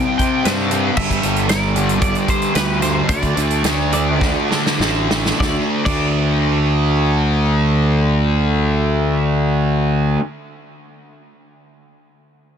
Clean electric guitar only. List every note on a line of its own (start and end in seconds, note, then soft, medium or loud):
0.00 0.17 G5 medium
0.18 0.46 G5 medium
0.45 0.84 C5 medium
0.84 0.99 B4 medium
0.97 1.49 E5 loud
1.49 2.01 D5 medium
2.02 2.29 D5 medium
2.30 2.55 C5 medium
2.56 2.82 B4 medium
2.82 3.08 C5 medium
3.09 3.92 D5 loud
3.94 4.76 D5 medium
5.40 5.57 D5 medium
5.85 10.15 D5 medium